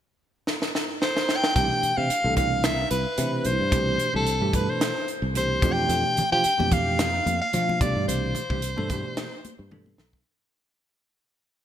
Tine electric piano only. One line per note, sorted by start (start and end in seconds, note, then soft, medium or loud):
1.55 1.91 B2 medium
1.55 1.91 E3 medium
1.55 1.92 A3 medium
1.55 1.92 D4 medium
1.55 1.92 G4 medium
1.97 2.08 B2 medium
1.97 2.08 E3 medium
1.97 2.08 A3 soft
1.97 2.09 D4 soft
1.97 2.09 G4 medium
2.10 2.17 D4 soft
2.10 2.18 E4 soft
2.24 2.35 B2 medium
2.24 2.35 E3 medium
2.24 2.35 A3 medium
2.24 2.36 D4 medium
2.24 2.36 A4 medium
2.37 2.73 B2 medium
2.37 2.73 E3 medium
2.37 2.73 A3 medium
2.37 2.73 D4 medium
2.37 2.73 E4 medium
2.79 2.85 D4 soft
2.79 2.86 A4 soft
3.19 3.66 B2 medium
3.19 3.66 E3 medium
3.19 3.66 A3 medium
3.19 3.67 D4 medium
3.19 3.67 E4 medium
3.71 4.08 B2 medium
3.71 4.08 E3 medium
3.71 4.08 A3 medium
3.71 4.08 D4 medium
3.71 4.09 G4 medium
4.13 4.24 B2 medium
4.13 4.25 E3 medium
4.13 4.25 A3 medium
4.13 4.25 D4 medium
4.13 4.25 G4 medium
4.27 4.34 D4 soft
4.27 4.35 G4 soft
4.41 4.52 B2 medium
4.41 4.52 E3 medium
4.41 4.52 A3 medium
4.41 4.52 D4 medium
4.41 4.52 G4 medium
4.54 4.90 B2 medium
4.54 4.90 E3 medium
4.54 4.90 A3 medium
4.54 4.91 D4 medium
4.54 4.91 A4 medium
4.97 5.02 D4 soft
4.97 5.03 E4 soft
5.35 5.61 B2 medium
5.35 5.62 E3 medium
5.35 5.62 A3 medium
5.35 5.63 D4 medium
5.35 5.63 G4 medium
5.62 6.21 B2 medium
5.62 6.22 E3 medium
5.62 6.22 A3 medium
5.62 6.22 D4 medium
5.62 6.22 G4 medium
6.32 6.42 B2 medium
6.32 6.43 E3 medium
6.32 6.43 A3 medium
6.32 6.43 D4 medium
6.32 6.43 G4 medium
6.44 6.51 D4 soft
6.44 6.52 G4 soft
6.58 6.69 B2 medium
6.58 6.69 E3 medium
6.58 6.69 A3 medium
6.58 6.70 D4 medium
6.58 6.70 G4 medium
6.71 7.07 B2 medium
6.71 7.07 E3 medium
6.71 7.08 A3 medium
6.71 7.08 D4 medium
6.71 7.08 G4 medium
7.14 7.19 D4 soft
7.14 7.20 G4 soft
7.53 7.79 B2 medium
7.53 7.79 E3 medium
7.53 7.80 A3 medium
7.53 7.80 D4 medium
7.53 7.81 F4 medium
7.80 8.39 B2 medium
7.80 8.39 E3 medium
7.80 8.40 A3 medium
7.80 8.40 D4 medium
7.80 8.40 G4 medium
8.50 8.60 B2 medium
8.50 8.60 E3 medium
8.50 8.61 A3 medium
8.50 8.61 D4 medium
8.50 8.61 G4 medium
8.63 8.69 D4 soft
8.76 8.87 B2 medium
8.76 8.87 E3 medium
8.76 8.87 A3 medium
8.76 8.88 D4 medium
8.76 8.88 A4 loud
8.90 9.26 B2 medium
8.90 9.26 E3 medium
8.90 9.26 A3 medium
8.90 9.26 D4 medium
8.90 9.27 G4 medium
9.33 9.38 D4 soft
9.33 9.38 A4 soft
9.71 10.19 B2 medium
9.71 10.19 E3 medium
9.71 10.19 A3 medium
9.71 10.19 D4 medium
9.71 10.19 A4 medium